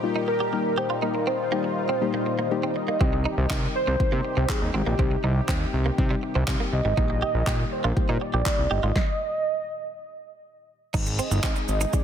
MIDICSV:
0, 0, Header, 1, 9, 480
1, 0, Start_track
1, 0, Key_signature, -3, "major"
1, 0, Tempo, 495868
1, 990, Time_signature, 4, 2, 24, 8
1, 11654, End_track
2, 0, Start_track
2, 0, Title_t, "Soft synth lead"
2, 0, Program_c, 0, 80
2, 30, Note_on_c, 0, 70, 96
2, 263, Note_off_c, 0, 70, 0
2, 269, Note_on_c, 0, 70, 98
2, 752, Note_on_c, 0, 72, 92
2, 766, Note_off_c, 0, 70, 0
2, 985, Note_off_c, 0, 72, 0
2, 991, Note_on_c, 0, 70, 93
2, 1232, Note_on_c, 0, 72, 109
2, 1247, Note_off_c, 0, 70, 0
2, 2674, Note_on_c, 0, 75, 99
2, 2688, Note_off_c, 0, 72, 0
2, 3392, Note_off_c, 0, 75, 0
2, 3631, Note_on_c, 0, 72, 116
2, 4350, Note_on_c, 0, 68, 98
2, 4364, Note_off_c, 0, 72, 0
2, 4589, Note_on_c, 0, 67, 86
2, 4604, Note_off_c, 0, 68, 0
2, 5310, Note_off_c, 0, 67, 0
2, 6513, Note_on_c, 0, 75, 122
2, 7474, Note_on_c, 0, 72, 102
2, 7488, Note_off_c, 0, 75, 0
2, 7954, Note_on_c, 0, 74, 110
2, 7968, Note_off_c, 0, 72, 0
2, 8434, Note_on_c, 0, 75, 112
2, 8449, Note_off_c, 0, 74, 0
2, 10112, Note_off_c, 0, 75, 0
2, 10834, Note_on_c, 0, 75, 98
2, 11555, Note_on_c, 0, 74, 100
2, 11569, Note_off_c, 0, 75, 0
2, 11654, Note_off_c, 0, 74, 0
2, 11654, End_track
3, 0, Start_track
3, 0, Title_t, "Synth pluck"
3, 0, Program_c, 1, 84
3, 29, Note_on_c, 1, 55, 85
3, 30, Note_on_c, 1, 58, 78
3, 33, Note_on_c, 1, 63, 78
3, 34, Note_on_c, 1, 65, 98
3, 403, Note_off_c, 1, 55, 0
3, 404, Note_off_c, 1, 58, 0
3, 405, Note_off_c, 1, 63, 0
3, 405, Note_off_c, 1, 65, 0
3, 509, Note_on_c, 1, 55, 78
3, 511, Note_on_c, 1, 58, 72
3, 512, Note_on_c, 1, 63, 71
3, 514, Note_on_c, 1, 67, 84
3, 883, Note_off_c, 1, 55, 0
3, 884, Note_off_c, 1, 58, 0
3, 884, Note_off_c, 1, 63, 0
3, 886, Note_off_c, 1, 67, 0
3, 988, Note_on_c, 1, 55, 74
3, 990, Note_on_c, 1, 58, 68
3, 992, Note_on_c, 1, 63, 68
3, 993, Note_on_c, 1, 70, 82
3, 1363, Note_off_c, 1, 55, 0
3, 1363, Note_off_c, 1, 58, 0
3, 1364, Note_off_c, 1, 63, 0
3, 1365, Note_off_c, 1, 70, 0
3, 1468, Note_on_c, 1, 55, 83
3, 1470, Note_on_c, 1, 58, 76
3, 1471, Note_on_c, 1, 63, 77
3, 1474, Note_on_c, 1, 67, 90
3, 1843, Note_off_c, 1, 55, 0
3, 1844, Note_off_c, 1, 58, 0
3, 1844, Note_off_c, 1, 63, 0
3, 1845, Note_off_c, 1, 67, 0
3, 1948, Note_on_c, 1, 55, 102
3, 1950, Note_on_c, 1, 58, 98
3, 1951, Note_on_c, 1, 63, 99
3, 1954, Note_on_c, 1, 67, 109
3, 2323, Note_off_c, 1, 55, 0
3, 2323, Note_off_c, 1, 58, 0
3, 2324, Note_off_c, 1, 63, 0
3, 2325, Note_off_c, 1, 67, 0
3, 2428, Note_on_c, 1, 55, 98
3, 2430, Note_on_c, 1, 58, 92
3, 2431, Note_on_c, 1, 63, 94
3, 2433, Note_on_c, 1, 67, 113
3, 2803, Note_off_c, 1, 55, 0
3, 2803, Note_off_c, 1, 58, 0
3, 2804, Note_off_c, 1, 63, 0
3, 2805, Note_off_c, 1, 67, 0
3, 2907, Note_on_c, 1, 55, 84
3, 2909, Note_on_c, 1, 60, 77
3, 2911, Note_on_c, 1, 63, 77
3, 2912, Note_on_c, 1, 67, 91
3, 3282, Note_off_c, 1, 55, 0
3, 3283, Note_off_c, 1, 60, 0
3, 3284, Note_off_c, 1, 63, 0
3, 3284, Note_off_c, 1, 67, 0
3, 3389, Note_on_c, 1, 55, 87
3, 3390, Note_on_c, 1, 60, 75
3, 3392, Note_on_c, 1, 63, 81
3, 3393, Note_on_c, 1, 70, 98
3, 3763, Note_off_c, 1, 55, 0
3, 3763, Note_off_c, 1, 60, 0
3, 3764, Note_off_c, 1, 63, 0
3, 3765, Note_off_c, 1, 70, 0
3, 3868, Note_on_c, 1, 55, 87
3, 3870, Note_on_c, 1, 60, 78
3, 3872, Note_on_c, 1, 63, 83
3, 3873, Note_on_c, 1, 70, 98
3, 4242, Note_off_c, 1, 55, 0
3, 4244, Note_off_c, 1, 60, 0
3, 4244, Note_off_c, 1, 63, 0
3, 4245, Note_off_c, 1, 70, 0
3, 4349, Note_on_c, 1, 55, 78
3, 4351, Note_on_c, 1, 60, 70
3, 4352, Note_on_c, 1, 63, 68
3, 4354, Note_on_c, 1, 67, 87
3, 4723, Note_off_c, 1, 55, 0
3, 4724, Note_off_c, 1, 60, 0
3, 4725, Note_off_c, 1, 63, 0
3, 4725, Note_off_c, 1, 67, 0
3, 4830, Note_on_c, 1, 55, 73
3, 4831, Note_on_c, 1, 60, 68
3, 4832, Note_on_c, 1, 63, 70
3, 4834, Note_on_c, 1, 67, 79
3, 5203, Note_off_c, 1, 55, 0
3, 5204, Note_off_c, 1, 60, 0
3, 5205, Note_off_c, 1, 63, 0
3, 5206, Note_off_c, 1, 67, 0
3, 5309, Note_on_c, 1, 55, 100
3, 5311, Note_on_c, 1, 60, 92
3, 5312, Note_on_c, 1, 63, 92
3, 5315, Note_on_c, 1, 67, 110
3, 5683, Note_off_c, 1, 55, 0
3, 5684, Note_off_c, 1, 60, 0
3, 5685, Note_off_c, 1, 63, 0
3, 5686, Note_off_c, 1, 67, 0
3, 5789, Note_on_c, 1, 55, 104
3, 5790, Note_on_c, 1, 60, 94
3, 5793, Note_on_c, 1, 63, 99
3, 5794, Note_on_c, 1, 67, 120
3, 6163, Note_off_c, 1, 55, 0
3, 6164, Note_off_c, 1, 60, 0
3, 6165, Note_off_c, 1, 63, 0
3, 6166, Note_off_c, 1, 67, 0
3, 6270, Note_on_c, 1, 55, 105
3, 6271, Note_on_c, 1, 60, 94
3, 6272, Note_on_c, 1, 63, 94
3, 6274, Note_on_c, 1, 67, 115
3, 6643, Note_off_c, 1, 55, 0
3, 6644, Note_off_c, 1, 60, 0
3, 6645, Note_off_c, 1, 63, 0
3, 6646, Note_off_c, 1, 67, 0
3, 6749, Note_on_c, 1, 55, 81
3, 6751, Note_on_c, 1, 58, 76
3, 6752, Note_on_c, 1, 63, 77
3, 6754, Note_on_c, 1, 67, 96
3, 7123, Note_off_c, 1, 55, 0
3, 7124, Note_off_c, 1, 58, 0
3, 7125, Note_off_c, 1, 63, 0
3, 7126, Note_off_c, 1, 67, 0
3, 7229, Note_on_c, 1, 55, 87
3, 7231, Note_on_c, 1, 58, 79
3, 7232, Note_on_c, 1, 63, 78
3, 7234, Note_on_c, 1, 67, 95
3, 7603, Note_off_c, 1, 55, 0
3, 7604, Note_off_c, 1, 58, 0
3, 7605, Note_off_c, 1, 63, 0
3, 7606, Note_off_c, 1, 67, 0
3, 7708, Note_on_c, 1, 55, 92
3, 7710, Note_on_c, 1, 58, 80
3, 7712, Note_on_c, 1, 63, 80
3, 7713, Note_on_c, 1, 67, 97
3, 8082, Note_off_c, 1, 55, 0
3, 8083, Note_off_c, 1, 58, 0
3, 8084, Note_off_c, 1, 63, 0
3, 8085, Note_off_c, 1, 67, 0
3, 8188, Note_on_c, 1, 55, 81
3, 8190, Note_on_c, 1, 58, 72
3, 8192, Note_on_c, 1, 63, 72
3, 8193, Note_on_c, 1, 67, 90
3, 8563, Note_off_c, 1, 55, 0
3, 8563, Note_off_c, 1, 58, 0
3, 8564, Note_off_c, 1, 63, 0
3, 8565, Note_off_c, 1, 67, 0
3, 11069, Note_on_c, 1, 56, 79
3, 11071, Note_on_c, 1, 60, 73
3, 11072, Note_on_c, 1, 63, 76
3, 11073, Note_on_c, 1, 68, 88
3, 11443, Note_off_c, 1, 56, 0
3, 11444, Note_off_c, 1, 60, 0
3, 11444, Note_off_c, 1, 63, 0
3, 11445, Note_off_c, 1, 68, 0
3, 11550, Note_on_c, 1, 56, 81
3, 11551, Note_on_c, 1, 60, 79
3, 11553, Note_on_c, 1, 63, 77
3, 11555, Note_on_c, 1, 68, 93
3, 11654, Note_off_c, 1, 56, 0
3, 11654, Note_off_c, 1, 60, 0
3, 11654, Note_off_c, 1, 63, 0
3, 11654, Note_off_c, 1, 68, 0
3, 11654, End_track
4, 0, Start_track
4, 0, Title_t, "Clean electric guitar"
4, 0, Program_c, 2, 27
4, 151, Note_on_c, 2, 63, 73
4, 237, Note_off_c, 2, 63, 0
4, 391, Note_on_c, 2, 67, 69
4, 476, Note_off_c, 2, 67, 0
4, 751, Note_on_c, 2, 67, 77
4, 837, Note_off_c, 2, 67, 0
4, 870, Note_on_c, 2, 65, 75
4, 956, Note_off_c, 2, 65, 0
4, 990, Note_on_c, 2, 63, 85
4, 1076, Note_off_c, 2, 63, 0
4, 1230, Note_on_c, 2, 60, 70
4, 1316, Note_off_c, 2, 60, 0
4, 1471, Note_on_c, 2, 58, 86
4, 1556, Note_off_c, 2, 58, 0
4, 1830, Note_on_c, 2, 60, 75
4, 1916, Note_off_c, 2, 60, 0
4, 2070, Note_on_c, 2, 58, 65
4, 2156, Note_off_c, 2, 58, 0
4, 2310, Note_on_c, 2, 58, 69
4, 2396, Note_off_c, 2, 58, 0
4, 2550, Note_on_c, 2, 60, 76
4, 2636, Note_off_c, 2, 60, 0
4, 2791, Note_on_c, 2, 58, 67
4, 2876, Note_off_c, 2, 58, 0
4, 2911, Note_on_c, 2, 60, 75
4, 2996, Note_off_c, 2, 60, 0
4, 3150, Note_on_c, 2, 63, 81
4, 3236, Note_off_c, 2, 63, 0
4, 3390, Note_on_c, 2, 63, 83
4, 3476, Note_off_c, 2, 63, 0
4, 3750, Note_on_c, 2, 60, 83
4, 3836, Note_off_c, 2, 60, 0
4, 3990, Note_on_c, 2, 58, 74
4, 4076, Note_off_c, 2, 58, 0
4, 4229, Note_on_c, 2, 60, 71
4, 4315, Note_off_c, 2, 60, 0
4, 4589, Note_on_c, 2, 60, 78
4, 4676, Note_off_c, 2, 60, 0
4, 4709, Note_on_c, 2, 58, 78
4, 4795, Note_off_c, 2, 58, 0
4, 4830, Note_on_c, 2, 60, 82
4, 4916, Note_off_c, 2, 60, 0
4, 5070, Note_on_c, 2, 63, 70
4, 5156, Note_off_c, 2, 63, 0
4, 5310, Note_on_c, 2, 60, 87
4, 5396, Note_off_c, 2, 60, 0
4, 5670, Note_on_c, 2, 58, 75
4, 5756, Note_off_c, 2, 58, 0
4, 5910, Note_on_c, 2, 55, 66
4, 5996, Note_off_c, 2, 55, 0
4, 6151, Note_on_c, 2, 60, 73
4, 6236, Note_off_c, 2, 60, 0
4, 6391, Note_on_c, 2, 58, 76
4, 6476, Note_off_c, 2, 58, 0
4, 6631, Note_on_c, 2, 55, 69
4, 6716, Note_off_c, 2, 55, 0
4, 6751, Note_on_c, 2, 63, 77
4, 6836, Note_off_c, 2, 63, 0
4, 6992, Note_on_c, 2, 67, 77
4, 7077, Note_off_c, 2, 67, 0
4, 7232, Note_on_c, 2, 67, 85
4, 7317, Note_off_c, 2, 67, 0
4, 7592, Note_on_c, 2, 65, 84
4, 7677, Note_off_c, 2, 65, 0
4, 7831, Note_on_c, 2, 63, 71
4, 7917, Note_off_c, 2, 63, 0
4, 8070, Note_on_c, 2, 67, 68
4, 8156, Note_off_c, 2, 67, 0
4, 8429, Note_on_c, 2, 67, 81
4, 8515, Note_off_c, 2, 67, 0
4, 8549, Note_on_c, 2, 65, 76
4, 8635, Note_off_c, 2, 65, 0
4, 10590, Note_on_c, 2, 63, 92
4, 10676, Note_off_c, 2, 63, 0
4, 10831, Note_on_c, 2, 60, 80
4, 10917, Note_off_c, 2, 60, 0
4, 11071, Note_on_c, 2, 60, 73
4, 11157, Note_off_c, 2, 60, 0
4, 11431, Note_on_c, 2, 63, 76
4, 11517, Note_off_c, 2, 63, 0
4, 11654, End_track
5, 0, Start_track
5, 0, Title_t, "Synth arpeggio sound"
5, 0, Program_c, 3, 84
5, 10591, Note_on_c, 3, 51, 95
5, 10660, Note_off_c, 3, 51, 0
5, 10711, Note_on_c, 3, 56, 76
5, 10780, Note_off_c, 3, 56, 0
5, 10831, Note_on_c, 3, 60, 81
5, 10900, Note_off_c, 3, 60, 0
5, 10951, Note_on_c, 3, 63, 80
5, 11020, Note_off_c, 3, 63, 0
5, 11071, Note_on_c, 3, 75, 88
5, 11140, Note_off_c, 3, 75, 0
5, 11432, Note_on_c, 3, 56, 78
5, 11500, Note_off_c, 3, 56, 0
5, 11551, Note_on_c, 3, 51, 87
5, 11620, Note_off_c, 3, 51, 0
5, 11654, End_track
6, 0, Start_track
6, 0, Title_t, "Analog synth pad"
6, 0, Program_c, 4, 89
6, 0, Note_on_c, 4, 46, 79
6, 0, Note_on_c, 4, 51, 74
6, 0, Note_on_c, 4, 55, 71
6, 0, Note_on_c, 4, 63, 77
6, 0, Note_on_c, 4, 67, 88
6, 972, Note_off_c, 4, 67, 0
6, 990, Note_on_c, 4, 65, 92
6, 2872, Note_off_c, 4, 46, 0
6, 2891, Note_off_c, 4, 65, 0
6, 2910, Note_on_c, 4, 48, 81
6, 2910, Note_on_c, 4, 67, 88
6, 6712, Note_off_c, 4, 48, 0
6, 6712, Note_off_c, 4, 51, 0
6, 6751, Note_on_c, 4, 46, 80
6, 6751, Note_on_c, 4, 51, 75
6, 8631, Note_off_c, 4, 67, 0
6, 8632, Note_off_c, 4, 55, 0
6, 8632, Note_off_c, 4, 63, 0
6, 8652, Note_off_c, 4, 46, 0
6, 8652, Note_off_c, 4, 51, 0
6, 10592, Note_on_c, 4, 48, 82
6, 10592, Note_on_c, 4, 51, 75
6, 10592, Note_on_c, 4, 63, 73
6, 10593, Note_on_c, 4, 56, 72
6, 10593, Note_on_c, 4, 68, 90
6, 11654, Note_off_c, 4, 48, 0
6, 11654, Note_off_c, 4, 51, 0
6, 11654, Note_off_c, 4, 56, 0
6, 11654, Note_off_c, 4, 63, 0
6, 11654, Note_off_c, 4, 68, 0
6, 11654, End_track
7, 0, Start_track
7, 0, Title_t, "Analog synth bass"
7, 0, Program_c, 5, 38
7, 2910, Note_on_c, 5, 36, 101
7, 3160, Note_off_c, 5, 36, 0
7, 3270, Note_on_c, 5, 36, 92
7, 3353, Note_off_c, 5, 36, 0
7, 3390, Note_on_c, 5, 48, 104
7, 3557, Note_off_c, 5, 48, 0
7, 3750, Note_on_c, 5, 36, 91
7, 3834, Note_off_c, 5, 36, 0
7, 3872, Note_on_c, 5, 48, 50
7, 3920, Note_off_c, 5, 48, 0
7, 3991, Note_on_c, 5, 48, 91
7, 4074, Note_off_c, 5, 48, 0
7, 4231, Note_on_c, 5, 36, 94
7, 4314, Note_off_c, 5, 36, 0
7, 4471, Note_on_c, 5, 39, 90
7, 4554, Note_off_c, 5, 39, 0
7, 4591, Note_on_c, 5, 32, 96
7, 4674, Note_off_c, 5, 32, 0
7, 4711, Note_on_c, 5, 34, 81
7, 4794, Note_off_c, 5, 34, 0
7, 4830, Note_on_c, 5, 36, 104
7, 4997, Note_off_c, 5, 36, 0
7, 5070, Note_on_c, 5, 36, 101
7, 5237, Note_off_c, 5, 36, 0
7, 5311, Note_on_c, 5, 39, 96
7, 5477, Note_off_c, 5, 39, 0
7, 5551, Note_on_c, 5, 36, 94
7, 5717, Note_off_c, 5, 36, 0
7, 5792, Note_on_c, 5, 48, 109
7, 5958, Note_off_c, 5, 48, 0
7, 6151, Note_on_c, 5, 36, 98
7, 6234, Note_off_c, 5, 36, 0
7, 6270, Note_on_c, 5, 48, 103
7, 6353, Note_off_c, 5, 48, 0
7, 6511, Note_on_c, 5, 36, 88
7, 6594, Note_off_c, 5, 36, 0
7, 6631, Note_on_c, 5, 32, 92
7, 6714, Note_off_c, 5, 32, 0
7, 6751, Note_on_c, 5, 34, 106
7, 7000, Note_off_c, 5, 34, 0
7, 7111, Note_on_c, 5, 34, 91
7, 7194, Note_off_c, 5, 34, 0
7, 7230, Note_on_c, 5, 46, 102
7, 7397, Note_off_c, 5, 46, 0
7, 7590, Note_on_c, 5, 34, 98
7, 7674, Note_off_c, 5, 34, 0
7, 7711, Note_on_c, 5, 46, 46
7, 7759, Note_off_c, 5, 46, 0
7, 7832, Note_on_c, 5, 46, 99
7, 7915, Note_off_c, 5, 46, 0
7, 8072, Note_on_c, 5, 34, 95
7, 8155, Note_off_c, 5, 34, 0
7, 8311, Note_on_c, 5, 36, 91
7, 8394, Note_off_c, 5, 36, 0
7, 8431, Note_on_c, 5, 31, 86
7, 8514, Note_off_c, 5, 31, 0
7, 8550, Note_on_c, 5, 32, 86
7, 8634, Note_off_c, 5, 32, 0
7, 10590, Note_on_c, 5, 32, 104
7, 10840, Note_off_c, 5, 32, 0
7, 10951, Note_on_c, 5, 31, 86
7, 11034, Note_off_c, 5, 31, 0
7, 11310, Note_on_c, 5, 32, 95
7, 11477, Note_off_c, 5, 32, 0
7, 11654, End_track
8, 0, Start_track
8, 0, Title_t, "Muted clean electric guitar strokes"
8, 270, Note_on_c, 9, 29, 43
8, 367, Note_off_c, 9, 29, 0
8, 511, Note_on_c, 9, 29, 43
8, 608, Note_off_c, 9, 29, 0
8, 1109, Note_on_c, 9, 29, 47
8, 1206, Note_off_c, 9, 29, 0
8, 1590, Note_on_c, 9, 29, 44
8, 1686, Note_off_c, 9, 29, 0
8, 2190, Note_on_c, 9, 29, 43
8, 2287, Note_off_c, 9, 29, 0
8, 2670, Note_on_c, 9, 29, 45
8, 2767, Note_off_c, 9, 29, 0
8, 3031, Note_on_c, 9, 29, 45
8, 3128, Note_off_c, 9, 29, 0
8, 3509, Note_on_c, 9, 29, 44
8, 3606, Note_off_c, 9, 29, 0
8, 4110, Note_on_c, 9, 29, 43
8, 4207, Note_off_c, 9, 29, 0
8, 4349, Note_on_c, 9, 29, 43
8, 4446, Note_off_c, 9, 29, 0
8, 4950, Note_on_c, 9, 29, 45
8, 5047, Note_off_c, 9, 29, 0
8, 5431, Note_on_c, 9, 29, 45
8, 5527, Note_off_c, 9, 29, 0
8, 6031, Note_on_c, 9, 29, 44
8, 6127, Note_off_c, 9, 29, 0
8, 6511, Note_on_c, 9, 29, 45
8, 6608, Note_off_c, 9, 29, 0
8, 6872, Note_on_c, 9, 29, 43
8, 6969, Note_off_c, 9, 29, 0
8, 7352, Note_on_c, 9, 29, 46
8, 7449, Note_off_c, 9, 29, 0
8, 7951, Note_on_c, 9, 29, 44
8, 8048, Note_off_c, 9, 29, 0
8, 8189, Note_on_c, 9, 29, 44
8, 8286, Note_off_c, 9, 29, 0
8, 10951, Note_on_c, 9, 29, 44
8, 11048, Note_off_c, 9, 29, 0
8, 11192, Note_on_c, 9, 29, 47
8, 11288, Note_off_c, 9, 29, 0
8, 11551, Note_on_c, 9, 29, 48
8, 11648, Note_off_c, 9, 29, 0
8, 11654, End_track
9, 0, Start_track
9, 0, Title_t, "Drums"
9, 2910, Note_on_c, 9, 36, 102
9, 3007, Note_off_c, 9, 36, 0
9, 3390, Note_on_c, 9, 36, 114
9, 3391, Note_on_c, 9, 39, 118
9, 3487, Note_off_c, 9, 36, 0
9, 3488, Note_off_c, 9, 39, 0
9, 3872, Note_on_c, 9, 36, 110
9, 3969, Note_off_c, 9, 36, 0
9, 4349, Note_on_c, 9, 36, 109
9, 4349, Note_on_c, 9, 39, 111
9, 4446, Note_off_c, 9, 36, 0
9, 4446, Note_off_c, 9, 39, 0
9, 4830, Note_on_c, 9, 36, 100
9, 4927, Note_off_c, 9, 36, 0
9, 5311, Note_on_c, 9, 36, 110
9, 5311, Note_on_c, 9, 39, 120
9, 5407, Note_off_c, 9, 36, 0
9, 5408, Note_off_c, 9, 39, 0
9, 5792, Note_on_c, 9, 36, 110
9, 5889, Note_off_c, 9, 36, 0
9, 6269, Note_on_c, 9, 39, 107
9, 6270, Note_on_c, 9, 36, 115
9, 6366, Note_off_c, 9, 36, 0
9, 6366, Note_off_c, 9, 39, 0
9, 6750, Note_on_c, 9, 36, 102
9, 6847, Note_off_c, 9, 36, 0
9, 7230, Note_on_c, 9, 36, 107
9, 7231, Note_on_c, 9, 39, 121
9, 7327, Note_off_c, 9, 36, 0
9, 7327, Note_off_c, 9, 39, 0
9, 7712, Note_on_c, 9, 36, 106
9, 7809, Note_off_c, 9, 36, 0
9, 8189, Note_on_c, 9, 36, 112
9, 8189, Note_on_c, 9, 39, 106
9, 8286, Note_off_c, 9, 36, 0
9, 8286, Note_off_c, 9, 39, 0
9, 8669, Note_on_c, 9, 38, 86
9, 8670, Note_on_c, 9, 36, 105
9, 8766, Note_off_c, 9, 38, 0
9, 8767, Note_off_c, 9, 36, 0
9, 10590, Note_on_c, 9, 36, 108
9, 10590, Note_on_c, 9, 49, 92
9, 10590, Note_on_c, 9, 82, 62
9, 10687, Note_off_c, 9, 36, 0
9, 10687, Note_off_c, 9, 49, 0
9, 10687, Note_off_c, 9, 82, 0
9, 10709, Note_on_c, 9, 82, 49
9, 10806, Note_off_c, 9, 82, 0
9, 10829, Note_on_c, 9, 82, 57
9, 10926, Note_off_c, 9, 82, 0
9, 10953, Note_on_c, 9, 82, 64
9, 11050, Note_off_c, 9, 82, 0
9, 11066, Note_on_c, 9, 82, 83
9, 11070, Note_on_c, 9, 36, 115
9, 11070, Note_on_c, 9, 39, 122
9, 11163, Note_off_c, 9, 82, 0
9, 11166, Note_off_c, 9, 39, 0
9, 11167, Note_off_c, 9, 36, 0
9, 11188, Note_on_c, 9, 82, 46
9, 11285, Note_off_c, 9, 82, 0
9, 11309, Note_on_c, 9, 82, 51
9, 11406, Note_off_c, 9, 82, 0
9, 11429, Note_on_c, 9, 82, 74
9, 11526, Note_off_c, 9, 82, 0
9, 11549, Note_on_c, 9, 82, 68
9, 11552, Note_on_c, 9, 36, 112
9, 11646, Note_off_c, 9, 82, 0
9, 11649, Note_off_c, 9, 36, 0
9, 11654, End_track
0, 0, End_of_file